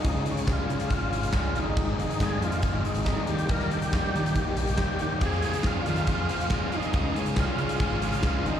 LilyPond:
<<
  \new Staff \with { instrumentName = "Tonewheel organ" } { \time 4/4 \key des \lydian \tempo 4 = 139 ees'8 des'8 f'4 f'4. ees'8~ | ees'4 aes'8 f'8 f'8 ees'4 g'8 | bes'8 g'2. g'8 | aes'8 aes'8 f'8 f'2 ees'8~ |
ees'8 des'8 f'4 f'4. ees'8 | }
  \new Staff \with { instrumentName = "Distorted electric guitar" } { \time 4/4 \key des \lydian r1 | r1 | r1 | <f c' f' aes'>8 <f c' f' aes'>8 <f c' f' aes'>8 <f c' f' aes'>8 <f c' f' aes'>8 <f c' f' aes'>8 <f c' f' aes'>8 <f c' f' aes'>8 |
<des aes des' f' aes'>8 <des aes des' f' aes'>8 <des aes des' f' aes'>8 <des aes des' f' aes'>8 <des aes des' f' aes'>8 <des aes des' f' aes'>8 <des aes des' f' aes'>8 <aes, ees aes c' ees' aes'>8 | }
  \new Staff \with { instrumentName = "Overdriven electric guitar" } { \time 4/4 \key des \lydian <des aes des' f' aes'>8 <des aes des' f' aes'>8 <des aes des' f' aes'>8 <des aes des' f' aes'>8 <des aes des' f' aes'>8 <des aes des' f' aes'>8 <des aes des' f' aes'>8 <aes, ees aes c' ees' aes'>8 | <aes, ees aes c' ees' aes'>8 <aes, ees aes c' ees' aes'>8 <aes, ees aes c' ees' aes'>8 <aes, ees aes c' ees' aes'>8 <aes, ees aes c' ees' aes'>8 <aes, ees aes c' ees' aes'>8 <aes, ees aes c' ees' aes'>8 <ees g bes ees' g'>8 | <ees g bes ees' g'>8 <ees g bes ees' g'>8 <ees g bes ees' g'>8 <ees g bes ees' g'>8 <ees g bes ees' g'>8 <ees g bes ees' g'>8 <ees g bes ees' g'>8 <ees g bes ees' g'>8 | <f c' f' aes'>8 <f c' f' aes'>8 <f c' f' aes'>8 <f c' f' aes'>8 <f c' f' aes'>8 <f c' f' aes'>8 <f c' f' aes'>8 <f c' f' aes'>8 |
<des aes des' f' aes'>8 <des aes des' f' aes'>8 <des aes des' f' aes'>8 <des aes des' f' aes'>8 <des aes des' f' aes'>8 <des aes des' f' aes'>8 <des aes des' f' aes'>8 <aes, ees aes c' ees' aes'>8 | }
  \new Staff \with { instrumentName = "Picked electric bass" } { \clef bass \time 4/4 \key des \lydian des,16 des8 r16 des,16 r16 des8 r16 aes,,8. des,8 aes,,8~ | aes,,8 f,,16 r16 aes,,16 aes,,16 f,8 r16 aes,,16 r16 aes,,8 r16 ees,8~ | ees,16 ees8 r16 ees,16 r16 ees8 r16 bes,,8. ees,4 | f,8 ees,16 r16 f,16 f,16 ees8 r16 f,16 r16 f,8 r8. |
des,16 des8 r16 des,16 r16 des8 r16 aes,,8. des,8 aes,,8 | }
  \new DrumStaff \with { instrumentName = "Drums" } \drummode { \time 4/4 <hh bd>8 hh16 hh16 <hh bd sn>8 hh16 hh16 <hh bd>8 hh16 hh16 <hh bd sn>8 hh8 | <hh bd>8 hh16 hh16 <hh bd sn>8 hh16 hh16 <hh bd>8 hh16 hh16 <hh bd sn>8 hh16 hh16 | <hh bd>16 sn16 hh16 hh16 <hh bd sn>8 hh16 hh16 <hh bd>8 hh16 hh16 <hh bd sn>8 hh8 | <hh bd>16 sn16 hh16 hh16 <hh bd sn>8 hh16 hh16 <hh bd>8 hh16 hh16 <hh bd sn>8 hh16 hh16 |
<hh bd>8 hh16 hh16 <hh bd sn>8 hh16 hh16 <hh bd>8 hh16 hh16 <hh bd sn>8 hh8 | }
>>